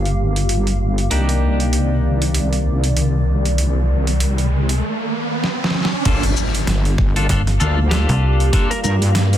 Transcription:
0.00 1.08 G1 medium
0.00 1.07 G3 medium
0.00 1.07 A#3 medium
0.00 1.07 F4 medium
0.00 3.11 G4 medium
0.00 2.37 F5 medium
0.05 closed hi-hat soft
0.36 closed hi-hat soft
0.49 closed hi-hat medium
0.67 closed hi-hat soft
0.98 closed hi-hat soft
1.10 4.82 C2 medium
1.10 4.78 C3 medium
1.10 4.82 D#3 medium
1.10 4.78 D#3 medium
1.10 6.03 A#3 medium
1.10 4.78 A#3 medium
1.10 6.03 D4 medium
1.10 6.03 D#4 medium
1.10 6.03 G4 medium
1.10 4.78 D5 medium
1.10 closed hi-hat medium
1.10 riser medium
1.29 closed hi-hat soft
1.60 closed hi-hat soft
1.65 4.82 D5 medium
1.73 closed hi-hat medium
2.22 closed hi-hat soft
2.34 closed hi-hat medium
2.53 closed hi-hat soft
2.84 closed hi-hat soft
2.97 closed hi-hat medium
3.45 closed hi-hat soft
3.58 closed hi-hat medium
4.07 closed hi-hat soft
4.20 closed hi-hat medium
4.38 closed hi-hat soft
4.69 closed hi-hat soft
5.44 snare medium
5.64 snare medium
5.70 snare medium
5.74 snare medium
5.81 snare soft
5.85 snare medium
5.93 snare soft
6.05 6.35 G1 loud
6.05 9.38 G3 medium
6.05 6.24 A#3 loud
6.05 9.38 A#3 medium
6.05 6.24 D4 medium
6.05 9.38 F4 medium
6.05 6.24 F4 medium
6.05 9.38 G4 medium
6.05 6.24 A4 medium
6.05 kick loud
6.05 closed hi-hat medium
6.05 crash loud
6.05 impact medium
6.17 9.38 F5 medium
6.23 closed hi-hat medium
6.36 shaker medium
6.55 closed hi-hat soft
6.67 6.96 G1 loud
6.67 snare loud
6.67 closed hi-hat medium
6.85 closed hi-hat soft
6.98 7.27 G1 loud
6.98 kick loud
6.98 snare medium
7.16 7.26 A#3 medium
7.16 7.26 D4 medium
7.16 7.26 F4 medium
7.16 7.26 A4 medium
7.16 closed hi-hat medium
7.29 7.58 G1 loud
7.29 7.41 A#3 medium
7.29 7.41 D4 medium
7.29 7.41 F4 medium
7.29 7.41 A4 medium
7.29 kick loud
7.29 closed hi-hat medium
7.47 snare soft
7.47 closed hi-hat soft
7.60 8.06 D2 loud
7.60 7.79 A#3 medium
7.60 7.79 D4 medium
7.60 7.79 F4 medium
7.60 7.79 A4 medium
7.60 shaker medium
7.91 8.50 A#3 medium
7.91 8.50 D4 medium
7.91 8.50 F4 medium
7.91 8.67 G4 medium
7.91 8.50 A4 medium
7.91 snare loud
7.91 closed hi-hat medium
8.09 8.51 C2 loud
8.09 closed hi-hat soft
8.40 closed hi-hat soft
8.53 8.71 A#3 loud
8.53 8.71 D4 medium
8.53 8.71 F4 medium
8.53 8.71 A4 loud
8.53 kick loud
8.53 closed hi-hat medium
8.71 8.79 A#4 medium
8.71 closed hi-hat medium
8.84 9.38 G2 loud
8.84 8.95 A#4 medium
8.84 shaker medium
9.02 closed hi-hat soft
9.15 snare loud
9.15 closed hi-hat medium
9.33 closed hi-hat soft

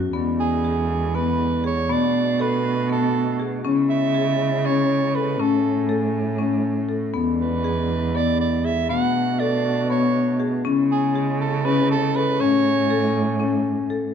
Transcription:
0.13 1.91 E2 medium
0.13 1.87 D3 medium
0.13 1.88 G#3 medium
0.13 0.41 B3 medium
0.13 1.87 E4 medium
0.40 1.17 G#4 medium
0.64 0.92 G#4 medium
1.14 1.42 B3 medium
1.14 1.65 B4 medium
1.64 1.78 G#4 medium
1.64 1.93 C#5 medium
1.89 3.63 B2 medium
1.89 3.66 B2 medium
1.89 3.63 A3 medium
1.89 2.16 B3 medium
1.89 3.63 D4 medium
1.89 2.43 D5 loud
2.39 2.67 A4 medium
2.39 2.90 B4 medium
2.89 3.17 B3 medium
2.89 3.43 A4 medium
3.40 3.53 G#4 medium
3.64 5.41 C#3 medium
3.64 6.98 C#3 medium
3.64 5.38 G#3 medium
3.64 3.92 C#4 medium
3.64 5.38 E4 medium
3.90 4.67 E5 medium
4.14 4.42 G#4 medium
4.65 4.92 C#4 medium
4.65 5.17 C#5 medium
5.15 5.28 A4 medium
5.15 5.42 B4 medium
5.39 7.16 A2 medium
5.39 6.98 A3 medium
5.39 5.67 C#4 medium
5.39 5.97 A4 medium
5.39 6.98 G#5 medium
5.89 6.16 A4 medium
6.38 6.66 C#4 medium
6.89 7.03 A4 medium
7.14 8.91 E2 medium
7.14 8.88 D3 medium
7.14 8.88 G#3 medium
7.14 7.41 B3 medium
7.14 8.88 E4 medium
7.40 8.17 B4 medium
7.64 7.92 G#4 medium
8.15 8.42 B3 medium
8.15 8.40 D5 medium
8.41 8.67 D5 medium
8.65 8.78 G#4 medium
8.65 8.90 E5 medium
8.89 10.63 B2 medium
8.89 10.67 B2 medium
8.89 10.63 A3 medium
8.89 9.17 B3 medium
8.89 10.62 D4 medium
8.89 9.42 F#5 medium
9.40 9.67 A4 medium
9.40 9.90 D5 medium
9.90 10.17 B3 medium
9.90 10.42 C#5 medium
10.40 10.53 G#4 medium
10.65 14.11 C#3 medium
10.65 12.42 C#3 medium
10.65 12.38 G#3 medium
10.65 10.92 C#4 medium
10.65 12.38 E4 medium
10.91 11.37 G#4 medium
11.15 11.42 G#4 medium
11.41 11.67 A4 medium
11.65 11.92 C#4 medium
11.65 11.90 B4 medium
11.91 12.18 A4 medium
12.15 12.28 A4 medium
12.15 12.42 B4 medium
12.40 14.11 A2 medium
12.40 14.13 A3 medium
12.40 12.67 C#4 medium
12.40 13.65 C#5 medium
12.40 14.14 G#5 medium
12.90 13.17 A4 medium
13.40 13.67 C#4 medium
13.90 14.04 A4 medium

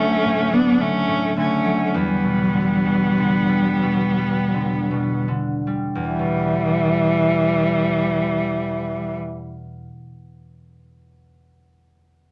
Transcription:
0.00 1.99 D2 medium
0.00 0.30 D3 medium
0.00 0.50 F#3 soft
0.00 0.54 A3 medium
0.00 0.55 C#4 medium
0.24 0.85 A2 medium
0.51 0.85 F#3 soft
0.51 0.82 B3 medium
0.51 0.82 D4 medium
0.79 1.13 D3 soft
0.79 1.37 A3 medium
0.79 1.36 C#4 medium
1.07 1.41 A2 soft
1.37 1.99 D3 soft
1.37 1.86 A3 medium
1.37 1.88 C#4 medium
1.65 1.99 F#3 soft
1.86 1.97 A3 soft
1.86 1.97 C#4 soft
1.94 5.84 E2 medium
1.94 5.29 G3 medium
1.94 5.29 B3 medium
2.23 2.59 B2 soft
2.53 2.90 D3 soft
2.86 3.21 B2 soft
3.18 3.87 D3 soft
3.49 4.17 G3 soft
3.82 4.58 B2 medium
4.18 4.58 G3 soft
4.54 4.95 D3 soft
4.91 5.34 B2 soft
5.28 6.13 D3 soft
5.67 6.13 G3 soft
5.95 9.85 E2 soft
6.08 9.17 E3 medium
6.08 9.17 G3 medium
6.19 10.09 B2 soft

